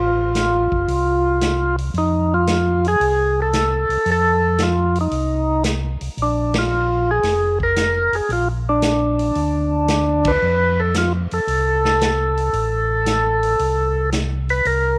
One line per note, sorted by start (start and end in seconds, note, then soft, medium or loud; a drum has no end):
0.00 0.68 A1 medium
0.00 1.76 F4 medium
0.35 snare medium
0.35 closed hi-hat soft
0.72 0.87 F#1 medium
0.72 kick medium
0.88 1.90 C2 medium
0.88 open hi-hat soft
1.41 snare medium
1.41 closed hi-hat soft
1.78 open hi-hat soft
1.94 2.96 F2 medium
1.94 open hi-hat soft
1.98 2.34 D#4 medium
2.34 2.87 F4 loud
2.47 snare medium
2.47 closed hi-hat soft
2.85 3.40 G#4 medium
2.85 open hi-hat soft
3.00 3.86 C2 medium
3.00 open hi-hat soft
3.42 4.10 A4 medium
3.53 snare medium
3.53 closed hi-hat medium
3.89 3.97 C2 soft
3.89 open hi-hat soft
4.06 5.08 F2 medium
4.06 open hi-hat soft
4.12 4.63 A4 loud
4.58 snare medium
4.58 closed hi-hat medium
4.63 4.98 F4 medium
4.95 open hi-hat soft
5.01 5.64 D#4 medium
5.11 5.97 C2 medium
5.11 open hi-hat soft
5.64 snare medium
5.64 closed hi-hat medium
6.01 6.10 C2 soft
6.01 open hi-hat soft
6.17 7.20 A#1 medium
6.17 open hi-hat soft
6.22 6.58 D4 medium
6.54 snare medium
6.54 ride medium
6.59 7.11 F4 medium
7.11 7.59 G#4 medium
7.23 8.09 F1 medium
7.23 snare soft
7.23 open hi-hat soft
7.60 8.16 A#4 medium
7.60 kick soft
7.76 snare medium
7.76 closed hi-hat medium
8.13 8.21 F1 soft
8.13 8.31 G#4 medium
8.13 open hi-hat soft
8.29 9.32 A#1 medium
8.29 8.48 F4 medium
8.29 open hi-hat soft
8.69 10.32 D4 medium
8.82 snare medium
8.82 closed hi-hat medium
9.19 open hi-hat soft
9.35 10.38 D2 medium
9.35 open hi-hat soft
9.88 snare medium
9.88 closed hi-hat medium
10.25 10.81 B4 loud
10.25 kick medium
10.25 ride medium
10.42 11.28 F2 medium
10.80 10.96 A4 medium
10.94 11.13 F4 medium
10.94 snare medium
10.94 closed hi-hat medium
11.31 11.40 F2 soft
11.31 14.10 A4 medium
11.31 open hi-hat soft
11.47 12.50 C2 medium
11.47 open hi-hat soft
11.85 snare soft
12.01 snare medium
12.01 closed hi-hat medium
12.37 open hi-hat soft
12.53 13.55 A1 medium
12.53 open hi-hat soft
13.06 snare medium
13.06 closed hi-hat medium
13.43 open hi-hat soft
13.59 14.62 C2 medium
13.59 open hi-hat soft
14.12 snare medium
14.12 closed hi-hat medium
14.49 14.67 B4 medium
14.49 open hi-hat soft
14.65 14.98 C2 medium
14.65 14.98 A#4 medium
14.65 open hi-hat soft